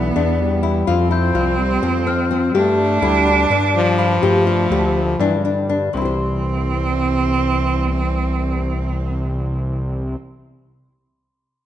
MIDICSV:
0, 0, Header, 1, 6, 480
1, 0, Start_track
1, 0, Key_signature, 0, "major"
1, 0, Tempo, 480000
1, 880, Time_signature, 7, 3, 24, 8
1, 5204, Tempo, 493827
1, 11477, End_track
2, 0, Start_track
2, 0, Title_t, "Glockenspiel"
2, 0, Program_c, 0, 9
2, 1122, Note_on_c, 0, 91, 67
2, 1599, Note_on_c, 0, 84, 43
2, 2072, Note_on_c, 0, 89, 70
2, 2636, Note_off_c, 0, 91, 0
2, 2750, Note_off_c, 0, 89, 0
2, 2752, Note_off_c, 0, 84, 0
2, 3519, Note_on_c, 0, 86, 54
2, 3982, Note_on_c, 0, 83, 81
2, 5048, Note_off_c, 0, 86, 0
2, 5520, Note_off_c, 0, 83, 0
2, 5917, Note_on_c, 0, 84, 64
2, 10700, Note_off_c, 0, 84, 0
2, 11477, End_track
3, 0, Start_track
3, 0, Title_t, "Nylon-string guitar"
3, 0, Program_c, 1, 24
3, 0, Note_on_c, 1, 62, 72
3, 131, Note_off_c, 1, 62, 0
3, 158, Note_on_c, 1, 62, 92
3, 580, Note_off_c, 1, 62, 0
3, 629, Note_on_c, 1, 64, 93
3, 845, Note_off_c, 1, 64, 0
3, 873, Note_on_c, 1, 65, 105
3, 1086, Note_off_c, 1, 65, 0
3, 1108, Note_on_c, 1, 64, 76
3, 1323, Note_off_c, 1, 64, 0
3, 1348, Note_on_c, 1, 65, 89
3, 1773, Note_off_c, 1, 65, 0
3, 1826, Note_on_c, 1, 60, 97
3, 2041, Note_off_c, 1, 60, 0
3, 2066, Note_on_c, 1, 60, 86
3, 2280, Note_off_c, 1, 60, 0
3, 2308, Note_on_c, 1, 60, 100
3, 2521, Note_off_c, 1, 60, 0
3, 2548, Note_on_c, 1, 67, 102
3, 2970, Note_off_c, 1, 67, 0
3, 3024, Note_on_c, 1, 64, 101
3, 3238, Note_off_c, 1, 64, 0
3, 3267, Note_on_c, 1, 62, 80
3, 3479, Note_off_c, 1, 62, 0
3, 3511, Note_on_c, 1, 62, 99
3, 3933, Note_off_c, 1, 62, 0
3, 3989, Note_on_c, 1, 65, 91
3, 4202, Note_off_c, 1, 65, 0
3, 4225, Note_on_c, 1, 67, 98
3, 4440, Note_off_c, 1, 67, 0
3, 4470, Note_on_c, 1, 65, 90
3, 4685, Note_off_c, 1, 65, 0
3, 4716, Note_on_c, 1, 67, 97
3, 5144, Note_off_c, 1, 67, 0
3, 5204, Note_on_c, 1, 62, 106
3, 5413, Note_off_c, 1, 62, 0
3, 5441, Note_on_c, 1, 62, 89
3, 5651, Note_off_c, 1, 62, 0
3, 5681, Note_on_c, 1, 62, 97
3, 5891, Note_off_c, 1, 62, 0
3, 5910, Note_on_c, 1, 60, 70
3, 5949, Note_on_c, 1, 64, 73
3, 5992, Note_on_c, 1, 67, 69
3, 6025, Note_off_c, 1, 64, 0
3, 6029, Note_on_c, 1, 72, 71
3, 10696, Note_off_c, 1, 60, 0
3, 10737, Note_off_c, 1, 67, 0
3, 10756, Note_off_c, 1, 72, 0
3, 11477, End_track
4, 0, Start_track
4, 0, Title_t, "Cello"
4, 0, Program_c, 2, 42
4, 0, Note_on_c, 2, 59, 110
4, 880, Note_on_c, 2, 60, 109
4, 895, Note_off_c, 2, 59, 0
4, 2552, Note_off_c, 2, 60, 0
4, 2559, Note_on_c, 2, 62, 116
4, 4195, Note_off_c, 2, 62, 0
4, 4223, Note_on_c, 2, 57, 105
4, 5398, Note_off_c, 2, 57, 0
4, 5913, Note_on_c, 2, 60, 110
4, 10017, Note_off_c, 2, 60, 0
4, 11477, End_track
5, 0, Start_track
5, 0, Title_t, "French horn"
5, 0, Program_c, 3, 60
5, 0, Note_on_c, 3, 52, 105
5, 413, Note_on_c, 3, 55, 115
5, 428, Note_off_c, 3, 52, 0
5, 877, Note_on_c, 3, 53, 99
5, 892, Note_off_c, 3, 55, 0
5, 1589, Note_on_c, 3, 55, 99
5, 1604, Note_off_c, 3, 53, 0
5, 1839, Note_on_c, 3, 53, 106
5, 1854, Note_off_c, 3, 55, 0
5, 2546, Note_on_c, 3, 57, 127
5, 2561, Note_off_c, 3, 53, 0
5, 3021, Note_on_c, 3, 55, 113
5, 3036, Note_off_c, 3, 57, 0
5, 3475, Note_off_c, 3, 55, 0
5, 3743, Note_on_c, 3, 53, 127
5, 5190, Note_on_c, 3, 52, 113
5, 5205, Note_off_c, 3, 53, 0
5, 5367, Note_on_c, 3, 49, 65
5, 5381, Note_off_c, 3, 52, 0
5, 5436, Note_on_c, 3, 50, 100
5, 5451, Note_off_c, 3, 49, 0
5, 5917, Note_off_c, 3, 50, 0
5, 5935, Note_on_c, 3, 52, 84
5, 10028, Note_off_c, 3, 52, 0
5, 11477, End_track
6, 0, Start_track
6, 0, Title_t, "Analog synth bass"
6, 0, Program_c, 4, 38
6, 0, Note_on_c, 4, 35, 112
6, 121, Note_off_c, 4, 35, 0
6, 163, Note_on_c, 4, 40, 95
6, 840, Note_off_c, 4, 40, 0
6, 881, Note_on_c, 4, 41, 102
6, 1319, Note_off_c, 4, 41, 0
6, 1348, Note_on_c, 4, 36, 109
6, 1791, Note_off_c, 4, 36, 0
6, 1831, Note_on_c, 4, 41, 97
6, 2510, Note_off_c, 4, 41, 0
6, 2546, Note_on_c, 4, 43, 106
6, 2987, Note_off_c, 4, 43, 0
6, 3019, Note_on_c, 4, 38, 109
6, 3464, Note_off_c, 4, 38, 0
6, 3503, Note_on_c, 4, 43, 92
6, 4188, Note_off_c, 4, 43, 0
6, 4231, Note_on_c, 4, 43, 103
6, 4676, Note_off_c, 4, 43, 0
6, 4707, Note_on_c, 4, 38, 121
6, 5159, Note_off_c, 4, 38, 0
6, 5194, Note_on_c, 4, 43, 100
6, 5876, Note_off_c, 4, 43, 0
6, 5924, Note_on_c, 4, 36, 100
6, 10023, Note_off_c, 4, 36, 0
6, 11477, End_track
0, 0, End_of_file